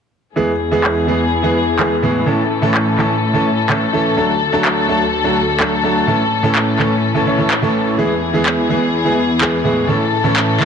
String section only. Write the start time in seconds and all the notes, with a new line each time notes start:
0.36 E2 E3 B3 G#4
2.27 A2 C#4 A4
4.17 D2 D3 F#4
6.08 A2 E3 C#4
7.98 E2 B3 G#4
9.89 A2 C#4 A4